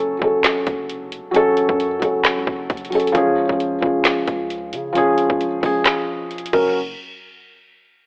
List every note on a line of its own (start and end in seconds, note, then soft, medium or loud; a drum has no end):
0.00 0.20 F#1 loud
0.00 0.19 F#3 loud
0.00 0.21 C#4 medium
0.00 0.24 A4 loud
0.19 0.43 F#1 loud
0.19 0.88 F#3 medium
0.19 0.89 C#4 medium
0.19 kick loud
0.24 0.91 A4 medium
0.44 snare loud
0.44 clap medium
0.44 closed hi-hat medium
0.67 1.22 F#1 loud
0.67 kick loud
0.67 closed hi-hat medium
0.90 closed hi-hat medium
1.12 closed hi-hat medium
1.31 1.84 F#3 loud
1.31 1.85 C#4 loud
1.31 closed hi-hat medium
1.36 1.87 A4 loud
1.57 closed hi-hat medium
1.69 2.01 F#2 loud
1.69 kick medium
1.80 closed hi-hat medium
1.99 2.38 F#1 loud
1.99 2.69 F#3 medium
1.99 2.70 C#4 medium
1.99 kick loud
1.99 closed hi-hat medium
2.04 2.71 A4 medium
2.24 snare loud
2.24 clap medium
2.24 closed hi-hat medium
2.37 2.47 C#2 loud
2.47 2.69 F#1 loud
2.47 kick loud
2.70 3.13 F#1 loud
2.70 kick loud
2.70 closed hi-hat soft
2.77 closed hi-hat medium
2.85 closed hi-hat medium
2.90 3.09 F#3 medium
2.90 3.10 C#4 medium
2.90 closed hi-hat medium
2.90 open hi-hat medium
2.95 3.11 A4 medium
3.00 closed hi-hat medium
3.07 closed hi-hat medium
3.12 3.48 C#2 loud
3.12 3.39 F3 loud
3.12 3.40 C#4 medium
3.12 kick loud
3.12 closed hi-hat medium
3.17 3.42 G#4 loud
3.47 3.81 C#2 loud
3.47 3.74 F3 medium
3.47 3.75 C#4 medium
3.47 kick medium
3.52 3.76 G#4 medium
3.60 closed hi-hat medium
3.81 4.26 C#2 loud
3.81 4.50 F3 medium
3.81 4.51 C#4 medium
3.81 kick loud
3.86 4.52 G#4 medium
4.05 snare loud
4.05 clap medium
4.05 closed hi-hat medium
4.27 4.74 C#2 loud
4.27 kick loud
4.27 closed hi-hat medium
4.50 closed hi-hat medium
4.73 5.03 C#3 loud
4.73 closed hi-hat medium
4.93 5.45 F3 loud
4.93 5.47 C#4 medium
4.93 closed hi-hat medium
4.97 5.28 C#2 loud
4.97 5.48 G#4 loud
5.18 closed hi-hat medium
5.30 5.62 C#2 loud
5.30 kick medium
5.41 closed hi-hat medium
5.61 5.85 C#2 loud
5.61 6.30 F3 medium
5.61 6.31 C#4 medium
5.61 kick loud
5.61 open hi-hat medium
5.66 6.32 G#4 medium
5.85 snare loud
5.85 clap medium
5.85 closed hi-hat medium
6.31 closed hi-hat soft
6.38 closed hi-hat medium
6.46 closed hi-hat medium
6.53 6.95 F#1 loud
6.53 6.74 F#3 medium
6.53 6.74 C#4 medium
6.53 6.74 A#4 loud
6.53 kick loud
6.53 crash medium